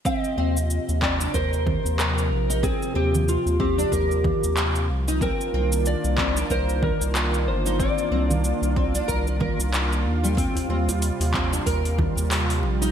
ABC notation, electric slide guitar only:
X:1
M:4/4
L:1/8
Q:"Swing 16ths" 1/4=93
K:Eb
V:1 name="Electric slide guitar"
e3 d c2 B2 | A G F G4 z | B2 d2 c B2 c | d6- d z |
z8 |]